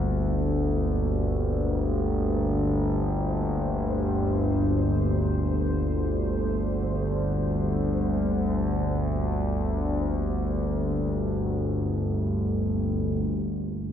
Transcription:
Already playing: synth drone G1 D2, ambient pad A#3 G4 D5
0.74 ambient pad C5
13.24 synth drone G1 D2

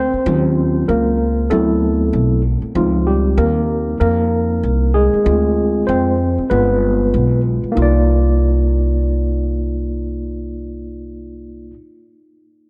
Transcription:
Already playing: upright bass D2, tine electric piano C4 C5
0.13 muted upright bass stroke
0.26 upright bass D#2, tine electric piano F#3 C#4 F4
0.88 upright bass C#2, tine electric piano A#3 A#4
1.50 upright bass D2, tine electric piano F#3 A3 B3 C4 E4 A4
2.13 upright bass B1
2.62 muted upright bass stroke
2.75 upright bass C#2, tine electric piano F3 C4 D#4 F4
3.07 tine electric piano G3 G4
3.37 upright bass D#2, tine electric piano A#3 A#4
4.00 upright bass F2, tine electric piano A#3 A#4
4.63 upright bass C2
4.94 tine electric piano G#3 G#4
5.14 muted upright bass stroke
5.25 upright bass D2, tine electric piano G#3 C4 F4
5.87 upright bass F2, tine electric piano C4 C5
6.38 muted upright bass stroke
6.50 upright bass G1, tine electric piano G#3 B3 F4 B4
7.14 upright bass B1
7.64 muted upright bass stroke
7.72 tine electric piano A#3 D#4
7.77 upright bass C2, tine electric piano F4
7.82 tine electric piano D5

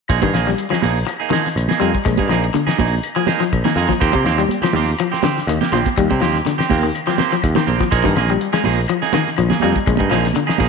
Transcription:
0.08 picked electric bass A#1, clean electric guitar F3 A#3 D#4 G#4, kick, closed hi-hat, claves
0.22 picked electric bass G2, clean electric guitar D#3 A#3 D#4 G#4, kick, high conga
0.33 picked electric bass A#1, clean electric guitar F3 A#3 G#4, snare, closed hi-hat, claves
0.47 clean electric guitar G3, snare, closed hi-hat
0.58 closed hi-hat
0.70 clean electric guitar F3 A#3 D#4 G#4, muted picked electric bass stroke, snare, claves
0.82 picked electric bass A#1, clean electric guitar F3 A#3 D#4 G#4, open hi-hat, high conga
1.07 muted clean electric guitar stroke, closed hi-hat, claves
1.20 clean electric guitar A#3 D#4 G#4
1.30 clean electric guitar D#3 F3 A#3 D#4 G#4, snare, closed hi-hat, high conga
1.46 snare, closed hi-hat
1.56 picked electric bass A#1, closed hi-hat, claves
1.68 clean electric guitar A#3 D#4 G#4, snare, high conga
1.80 picked electric bass F2, clean electric guitar F3 G3 A#3 D#4 G#4, closed hi-hat
1.95 kick, closed hi-hat
2.05 picked electric bass A#1, clean electric guitar G#3, kick, snare, closed hi-hat, claves
2.17 picked electric bass G2, clean electric guitar A#3 D#4 G#4, kick, high conga
2.29 picked electric bass A#1, clean electric guitar F3 A#3 D#4 G#4, snare, closed hi-hat, claves
2.44 closed hi-hat
2.54 clean electric guitar D3, closed hi-hat, high conga
2.67 clean electric guitar A#3 D#4 G#4, muted picked electric bass stroke, snare, claves
2.78 picked electric bass A#1, clean electric guitar A#3 D#4 G#4, muted clean electric guitar stroke, kick, open hi-hat, high conga
3.03 closed hi-hat, claves
3.16 clean electric guitar F3 A#3 G#4
3.27 clean electric guitar F3 A#3 D#4 G#4, snare, closed hi-hat, high conga
3.40 clean electric guitar F3, snare, closed hi-hat
3.53 picked electric bass A#1, kick, closed hi-hat, claves
3.64 clean electric guitar D#3 A#3 D#4 G#4, snare, high conga
3.76 picked electric bass F2, clean electric guitar F3 A#3 D#4 G#4, closed hi-hat
3.89 clean electric guitar F3, kick, snare, high conga
4.00 picked electric bass D#2, clean electric guitar F3 A#3 C4 G4, kick, closed hi-hat, claves
4.13 picked electric bass C3, clean electric guitar A#3 C4 G4, muted clean electric guitar stroke, kick, high conga
4.25 picked electric bass D#2, clean electric guitar F3 A#3 C4 G4, snare, closed hi-hat, claves
4.38 clean electric guitar G3, closed hi-hat
4.49 closed hi-hat, high conga
4.62 clean electric guitar F3 A#3 C4 G4, muted picked electric bass stroke, snare, claves
4.73 picked electric bass D#2, clean electric guitar F3 A#3 C4 G4, open hi-hat, high conga
4.99 clean electric guitar F3, closed hi-hat, claves
5.12 clean electric guitar A#3 C4 G4, snare
5.23 clean electric guitar D3 F3 C4 G4, muted clean electric guitar stroke, snare, closed hi-hat, high conga
5.38 snare, closed hi-hat
5.47 picked electric bass D#2, clean electric guitar D#3, closed hi-hat, claves
5.61 clean electric guitar A#3 G4, snare, high conga
5.72 picked electric bass A#1, clean electric guitar F3 A#3 C4 G4, snare, closed hi-hat, high conga
5.86 kick, closed hi-hat, high conga
5.97 picked electric bass D#2, clean electric guitar G3, kick, closed hi-hat, claves
6.10 picked electric bass C3, clean electric guitar A#3 C4 G4, kick, high conga
6.21 picked electric bass D#2, clean electric guitar F3 A#3 C4 G4, snare, closed hi-hat, claves
6.35 snare, closed hi-hat
6.45 clean electric guitar D3, snare, closed hi-hat, high conga
6.58 clean electric guitar C4 G4, muted picked electric bass stroke, muted clean electric guitar stroke, snare, claves
6.69 picked electric bass D#2, clean electric guitar F3 A#3 C4 G4, kick, open hi-hat, high conga
6.83 clean electric guitar D#3
6.95 closed hi-hat, claves
7.07 clean electric guitar F3 A#3 C4 G4, snare
7.18 clean electric guitar F3 A#3 C4 G4, snare, closed hi-hat, high conga
7.32 clean electric guitar F3, snare, closed hi-hat
7.42 picked electric bass D#2, kick, closed hi-hat, claves
7.55 clean electric guitar D#3 A#3 C4 G4, snare, high conga
7.66 picked electric bass A#1, clean electric guitar F3 A#3 C4 G4, closed hi-hat, high conga
7.80 clean electric guitar F3, kick, snare, high conga
7.91 picked electric bass A#1, clean electric guitar F3 A#3 D#4 G#4, kick, closed hi-hat, claves
8.04 picked electric bass G2, clean electric guitar D#3 A#3 D#4 G#4, kick, snare, high conga
8.16 picked electric bass A#1, clean electric guitar F3 A#3 G#4, muted clean electric guitar stroke, snare, closed hi-hat, claves
8.29 clean electric guitar G3, closed hi-hat
8.41 closed hi-hat
8.53 clean electric guitar G#3 A#3 D#4 G#4, muted picked electric bass stroke, snare, claves
8.64 picked electric bass A#1, clean electric guitar F3 A#3 D#4 G#4, open hi-hat, high conga
8.88 clean electric guitar F3, closed hi-hat, claves
9.02 clean electric guitar A#3 D#4 G#4, snare
9.13 clean electric guitar D#3 A#3 D#4 G#4, snare, closed hi-hat, high conga
9.27 snare, closed hi-hat
9.37 picked electric bass A#1, clean electric guitar F3, closed hi-hat, claves
9.50 clean electric guitar A#3 G#4, muted clean electric guitar stroke, snare, high conga
9.60 picked electric bass F2, clean electric guitar F3 G3 A#3 D#4 G#4, closed hi-hat, high conga
9.73 kick, closed hi-hat, high conga
9.87 picked electric bass A#1, clean electric guitar G#3, kick, closed hi-hat, claves
9.97 picked electric bass G2, clean electric guitar A#3 D#4 G#4, kick, high conga
10.10 picked electric bass A#1, clean electric guitar F3 A#3 D#4 G#4, snare, closed hi-hat, claves
10.25 snare, closed hi-hat
10.34 clean electric guitar D3, closed hi-hat, high conga
10.47 clean electric guitar A#3 D#4 G#4, muted picked electric bass stroke, snare, claves
10.58 picked electric bass A#1, clean electric guitar F3 A#3 D#4 G#4, kick, open hi-hat, high conga

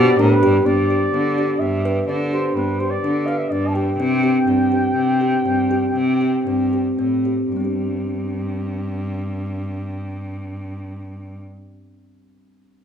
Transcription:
Already playing: cello B2, kalimba G4, flugelhorn D5
0.19 cello A2, kalimba D4, flugelhorn B4
0.43 cello G2, kalimba G4
0.65 cello G2, kalimba B3, flugelhorn D5
0.90 kalimba G4
1.14 cello D3, kalimba B3
1.38 kalimba G4
1.59 cello G2, kalimba B3, flugelhorn E5
1.85 kalimba B4
2.08 cello D3, kalimba D4, flugelhorn D5
2.31 kalimba G4, flugelhorn C5
2.55 cello G2, kalimba B3, flugelhorn B4
2.79 kalimba G4, flugelhorn C5
2.90 flugelhorn D5
3.04 cello D3, kalimba D4
3.26 kalimba B4, flugelhorn F5
3.38 flugelhorn E5
3.50 cello G2, kalimba D4, flugelhorn D5
3.67 flugelhorn A5
3.74 kalimba G4, flugelhorn G5
3.99 cello C3, kalimba C4
4.23 kalimba G4
4.47 cello G2, kalimba C4
4.72 kalimba G4
4.96 cello C3, kalimba C4
5.21 kalimba G4
5.46 cello G2, kalimba C4
5.71 kalimba G4
5.96 cello C3, kalimba C4
6.21 kalimba G4
6.47 cello G2, kalimba C4
6.73 kalimba G4
6.99 cello A2, kalimba C4
7.25 kalimba G4
7.52 cello G2, kalimba G3
7.57 kalimba B3 D4
7.64 kalimba G4

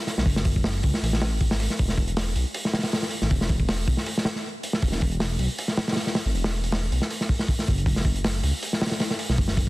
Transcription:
0.07 snare, open hi-hat
0.18 detuned saw bass B1, snare
0.26 detuned saw bass F#1, kick, open hi-hat
0.36 snare
0.45 kick, open hi-hat
0.56 kick
0.64 snare, open hi-hat
0.83 detuned saw bass C#2, kick, open hi-hat
0.94 snare
1.03 detuned saw bass A1, open hi-hat
1.13 snare
1.22 snare, open hi-hat
1.32 detuned saw bass G#1
1.40 kick, open hi-hat
1.51 snare, open hi-hat
1.60 open hi-hat
1.70 snare
1.79 detuned saw bass E1, kick, open hi-hat
1.89 snare
1.97 kick, open hi-hat
2.08 closed hi-hat
2.17 snare, open hi-hat
2.36 detuned saw bass B1, open hi-hat
2.54 open hi-hat
2.65 snare
2.73 snare, open hi-hat
2.79 snare, open hi-hat
2.83 snare, open hi-hat
2.92 snare, open hi-hat
3.02 snare
3.10 open hi-hat
3.22 detuned saw bass G#1, snare
3.31 detuned saw bass E1, kick, open hi-hat
3.41 snare
3.49 kick, open hi-hat
3.60 kick
3.69 snare, open hi-hat
3.88 detuned saw bass B1, kick, open hi-hat
3.97 snare
4.06 open hi-hat
4.18 snare
4.25 snare, open hi-hat
4.36 snare
4.63 open hi-hat
4.73 snare
4.82 detuned saw bass E1, kick, open hi-hat
4.92 snare
5.01 kick, open hi-hat
5.11 closed hi-hat
5.20 snare, open hi-hat
5.39 detuned saw bass B1, open hi-hat
5.58 open hi-hat
5.68 snare
5.77 snare, open hi-hat
5.88 snare, open hi-hat
5.92 snare, open hi-hat
5.96 snare, open hi-hat
6.07 snare
6.15 snare, open hi-hat
6.26 detuned saw bass G#1
6.34 detuned saw bass E1, open hi-hat
6.44 snare, open hi-hat
6.64 open hi-hat
6.72 snare, open hi-hat
6.91 detuned saw bass B1, open hi-hat
7.02 snare
7.10 open hi-hat
7.21 snare
7.29 kick, open hi-hat
7.39 snare
7.48 kick, open hi-hat
7.59 snare
7.67 detuned saw bass F#1, kick, open hi-hat
7.78 closed hi-hat
7.86 detuned saw bass F#1, kick, open hi-hat
7.96 snare
8.05 kick, open hi-hat
8.16 closed hi-hat
8.24 snare, open hi-hat
8.43 detuned saw bass C#2, open hi-hat
8.62 open hi-hat
8.73 snare
8.81 snare, open hi-hat
8.86 snare, open hi-hat
8.91 snare, open hi-hat
9.00 snare, open hi-hat
9.11 snare
9.19 open hi-hat
9.29 detuned saw bass B1, snare
9.38 detuned saw bass F#1, kick, open hi-hat
9.48 snare
9.57 kick, open hi-hat

